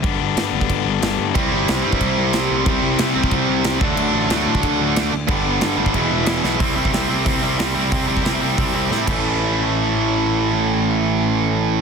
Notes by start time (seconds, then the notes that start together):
0.02 G1 G2 D3 G3 B3, kick, crash
0.07 D4
0.21 G1
0.37 G2, snare, crash
0.53 G1
0.61 kick
0.69 G1, kick, crash
0.85 G1
1.01 G1, snare, crash
1.18 G2
1.34 C2 C3 G3 C4, kick, crash
1.39 E4
1.52 G1
1.68 C2, snare, crash
1.83 G2 C3 G3 C4
1.93 kick
2.01 C2, kick, crash
2.18 C2
2.33 C2, snare, crash
2.51 C2
2.65 C2 C3 G3 C4, kick, crash
2.69 E4
2.82 C2
2.99 C3, snare, crash
3.15 C2 G3 C4
3.19 C3
3.24 kick
3.31 C2, kick, crash
3.49 C2
3.64 C2, snare, crash
3.80 D2 D3 F#3 A3 D4, kick
3.96 D2, crash
4.13 A1
4.29 D2 D3 A3 D4, snare, crash
4.46 A2
4.55 kick
4.63 D2, kick, crash
4.80 D2
4.96 D2, snare, crash
5.13 D2
5.28 G1 G2 D3 G3 B3 D4, kick, crash
5.45 G1
5.61 G2, snare, crash
5.77 G1 D3 G3
5.81 G2
5.86 kick
5.93 E1 E2 B2 E3 G#3 B3 E4, kick, crash
5.98 E3
6.11 E1
6.26 E1, snare, crash
6.43 B1 E2 B2 E3, snare
6.59 C2 C3 G3 C4 E4, kick, open hi-hat
6.75 C2 C3 G3 C4 E4
6.85 kick
6.91 C2 C3 G3 C4 E4, snare, open hi-hat
7.08 C2 C3 G3 C4 E4
7.25 C2 C3 G3 C4 E4, kick, open hi-hat
7.42 C2 C3 G3 C4 E4
7.57 C2 C3 G3 C4 E4, snare, open hi-hat
7.75 C2 C3 G3 C4 E4
7.91 C2 C3 G3 C4 E4, kick, open hi-hat
8.07 C2 C3 G3 C4 E4
8.17 kick
8.23 C2 C3 G3 C4 E4, snare, open hi-hat
8.40 C2 C3 G3 C4 E4
8.56 C2 C3 G3 C4 E4, kick, open hi-hat
8.73 C2 C3 G3 C4 E4
8.90 A2 C3 G3 C4 E4, snare
9.05 A1 A2 E3 A3 C#4, kick, crash
9.09 E4